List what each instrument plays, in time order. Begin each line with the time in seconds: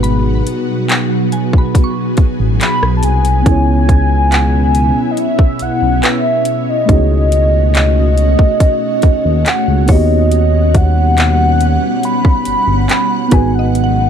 Already playing: analog synth bass G#1, ambient pad B2 F#3 B3 F#4, synth keys B3 D#4 F#4 G#4 B4
0.03 synth pluck B5, closed hi-hat
0.47 closed hi-hat
0.89 clap, closed hi-hat
1.32 ambient pad G#4, synth pluck G#5, closed hi-hat
1.53 kick
1.58 synth pluck B5
1.75 kick, closed hi-hat
1.84 synth pluck C#6
2.17 analog synth bass A1, kick, closed hi-hat
2.40 analog synth bass A1
2.61 soft synth lead B5, clap, closed hi-hat
2.82 analog synth bass B1, cross-stick
2.97 soft synth lead A5
3.03 analog synth bass C2, soft synth lead G#5, closed hi-hat, open hi-hat
3.25 closed hi-hat
3.42 synth keys B3 C#4, ambient pad C#4, kick
3.46 analog synth bass C#2, ambient pad E4, synth keys E4 G#4, closed hi-hat
3.51 synth keys C#5
3.89 kick, closed hi-hat
4.32 synth pluck F#5, clap, closed hi-hat
4.75 closed hi-hat
5.11 soft synth lead D#5
5.17 soft synth lead E5, closed hi-hat
5.39 kick
5.59 analog synth bass B1, soft synth lead F#5, closed hi-hat
5.82 analog synth bass B1
6.03 synth pluck B4, soft synth lead E5, clap, closed hi-hat
6.45 closed hi-hat
6.69 soft synth lead D#5
6.86 analog synth bass C#2, synth keys A3 D#4, ambient pad A3 F#4, kick, closed hi-hat
6.90 synth keys F#4 G#4
6.94 synth keys C#5
7.32 closed hi-hat
7.75 clap, closed hi-hat
8.18 closed hi-hat
8.39 kick
8.60 kick, closed hi-hat
9.02 analog synth bass D#2, kick, closed hi-hat
9.25 analog synth bass D#2
9.46 soft synth lead F#5, clap, closed hi-hat
9.68 analog synth bass C#2
9.85 analog synth bass D#2, ambient pad G3 B3 F#5, synth keys B3 D#4, synth pluck C#5, kick, open hi-hat
9.90 synth keys F#4 G4, soft synth lead D#5
9.94 synth keys C#5
10.31 closed hi-hat
10.74 soft synth lead F#5, kick, closed hi-hat
11.18 clap, closed hi-hat
11.61 closed hi-hat
12.03 soft synth lead B5, closed hi-hat
12.25 kick
12.45 analog synth bass G1, closed hi-hat
12.68 analog synth bass G1
12.89 clap, closed hi-hat
13.28 ambient pad D#3 F#3 G#3 B3, synth keys B3 D#4, synth pluck B4, kick, closed hi-hat
13.32 analog synth bass G#1, synth keys F#4 G#4, soft synth lead G#5
13.37 synth keys B4
13.55 soft synth lead F#5
13.59 synth pluck D#5
13.75 closed hi-hat
13.84 synth pluck F#5